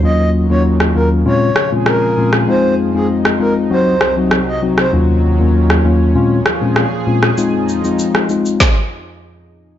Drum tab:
SH |----------------|----------------|----------------|x-xxx-xx--------|
SD |-----r----r-r--r|-----r----r-r--r|-----r----r-r--r|-----r--o-------|
BD |----------------|----------------|----------------|--------o-------|